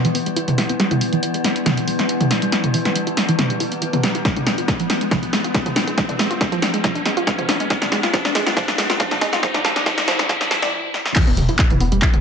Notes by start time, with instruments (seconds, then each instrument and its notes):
Already playing: synth drone E3 B3, riser
0.05 synth arpeggio sound E3, closed hi-hat
0.15 synth arpeggio sound B3, open hi-hat
0.26 synth arpeggio sound G3, closed hi-hat
0.36 synth arpeggio sound E4, closed hi-hat
0.48 closed hi-hat, mid tom
0.58 synth arpeggio sound E3, snare, open hi-hat
0.69 synth arpeggio sound B3, closed hi-hat
0.80 synth arpeggio sound G3, snare, closed hi-hat
0.91 synth arpeggio sound E4, closed hi-hat, mid tom
1.01 open hi-hat
1.13 synth arpeggio sound E3, closed hi-hat
1.23 synth arpeggio sound B3, closed hi-hat
1.34 synth arpeggio sound G3, closed hi-hat
1.44 synth arpeggio sound E4, snare, open hi-hat
1.56 closed hi-hat
1.66 synth arpeggio sound E3, snare, closed hi-hat, mid tom
1.77 synth arpeggio sound B3, closed hi-hat
1.88 synth arpeggio sound G3, open hi-hat
1.99 synth arpeggio sound E4, snare, closed hi-hat
2.09 closed hi-hat
2.21 synth arpeggio sound E3, closed hi-hat, mid tom
2.31 synth arpeggio sound B3, snare, open hi-hat
2.42 synth arpeggio sound G3, closed hi-hat
2.52 synth arpeggio sound E4, snare, closed hi-hat
2.64 closed hi-hat, mid tom
2.74 synth arpeggio sound E3, open hi-hat
2.85 synth arpeggio sound B3, snare, closed hi-hat
2.96 synth arpeggio sound G3, closed hi-hat
3.07 synth arpeggio sound E4, closed hi-hat
3.17 snare, open hi-hat
3.29 synth arpeggio sound E3, closed hi-hat
3.39 synth arpeggio sound B3, snare, closed hi-hat, mid tom
3.50 synth arpeggio sound G3, closed hi-hat
3.60 synth arpeggio sound E4, open hi-hat
3.72 closed hi-hat
3.82 synth arpeggio sound E3, closed hi-hat
3.93 synth arpeggio sound B3, closed hi-hat, mid tom
4.03 synth arpeggio sound G3, snare, open hi-hat
4.15 synth arpeggio sound E4, closed hi-hat
4.25 synth arpeggio sound F3, kick, snare, closed hi-hat
4.36 synth arpeggio sound D4, closed hi-hat, mid tom
4.47 synth arpeggio sound G#3, snare, open hi-hat
4.58 synth arpeggio sound F4, closed hi-hat
4.68 kick, snare, closed hi-hat
4.79 synth arpeggio sound F3, closed hi-hat
4.90 synth arpeggio sound D4, snare, open hi-hat
5.01 synth arpeggio sound G#3, closed hi-hat
5.11 synth arpeggio sound F3, kick, snare, closed hi-hat, mid tom
5.23 synth arpeggio sound D4, closed hi-hat
5.33 synth arpeggio sound G#3, snare, open hi-hat
5.44 synth arpeggio sound F4, closed hi-hat
5.54 kick, snare, closed hi-hat
5.66 synth arpeggio sound F3, closed hi-hat, mid tom
5.76 synth arpeggio sound D4, snare, open hi-hat
5.87 synth arpeggio sound G#3, closed hi-hat
5.97 synth arpeggio sound F3, kick, snare, closed hi-hat
6.09 synth arpeggio sound D4, closed hi-hat, mid tom
6.19 synth arpeggio sound G#3, snare, open hi-hat
6.30 synth arpeggio sound F4, closed hi-hat
6.41 kick, snare, closed hi-hat
6.52 synth arpeggio sound F3, closed hi-hat
6.62 synth arpeggio sound D4, snare, open hi-hat
6.74 synth arpeggio sound G#3, closed hi-hat
6.84 synth arpeggio sound F3, kick, snare, closed hi-hat, mid tom
6.95 synth arpeggio sound D4, closed hi-hat
7.05 synth arpeggio sound G#3, snare, open hi-hat
7.17 synth arpeggio sound F4, closed hi-hat
7.27 kick, snare, closed hi-hat
7.38 synth arpeggio sound F3, closed hi-hat, mid tom
7.49 synth arpeggio sound D4, snare, open hi-hat
7.60 synth arpeggio sound G#3, closed hi-hat
7.70 synth arpeggio sound F3, kick, snare, closed hi-hat
7.82 synth arpeggio sound D4, snare, closed hi-hat, mid tom
7.92 synth arpeggio sound G#3, snare, open hi-hat
8.03 synth arpeggio sound F4, snare, closed hi-hat
8.13 synth arpeggio sound F3, kick, snare, closed hi-hat
8.25 synth arpeggio sound D4, snare, closed hi-hat
8.35 synth arpeggio sound G#3, snare, open hi-hat
8.47 synth arpeggio sound F4, snare, closed hi-hat
8.57 synth arpeggio sound F3, kick, snare, closed hi-hat, mid tom
8.68 synth arpeggio sound D4, snare, closed hi-hat
8.78 synth arpeggio sound G#3, snare, open hi-hat
8.90 synth arpeggio sound F4, snare, closed hi-hat
9.00 synth arpeggio sound F3, kick, snare, closed hi-hat
9.11 synth arpeggio sound D4, snare, closed hi-hat, mid tom
9.21 synth arpeggio sound G#3, snare, open hi-hat
9.33 synth arpeggio sound F4, snare, closed hi-hat
9.43 synth arpeggio sound F3, kick, snare, closed hi-hat
9.54 synth arpeggio sound D4, snare, closed hi-hat, mid tom
9.65 synth arpeggio sound F3, snare, open hi-hat
9.76 synth arpeggio sound D4, snare, closed hi-hat
9.86 synth arpeggio sound F3, kick, snare, closed hi-hat
9.98 synth arpeggio sound D4, snare, closed hi-hat
10.08 synth arpeggio sound F3, snare, open hi-hat
10.19 synth arpeggio sound D4, snare, closed hi-hat
10.29 synth arpeggio sound F3, kick, snare, closed hi-hat, mid tom
10.41 synth arpeggio sound D4, snare, closed hi-hat
10.51 synth arpeggio sound F3, snare, open hi-hat
10.62 synth arpeggio sound D4, snare, closed hi-hat
10.94 snare
11.06 snare
11.16 synth drone E3 B3, synth arpeggio sound E3, kick, clap, closed hi-hat, crash, impact
11.27 sub bass E1, synth arpeggio sound B3, closed hi-hat
11.37 sub bass E1, synth arpeggio sound G3, mid tom, open hi-hat
11.49 synth arpeggio sound E4, closed hi-hat
11.59 kick, clap, closed hi-hat
11.70 sub bass E1, synth arpeggio sound E3, closed hi-hat, mid tom
11.80 sub bass E1, synth arpeggio sound B3, open hi-hat
11.92 sub bass E1, synth arpeggio sound G3, closed hi-hat
12.02 synth arpeggio sound E4, kick, clap, closed hi-hat
12.13 sub bass E1, closed hi-hat, mid tom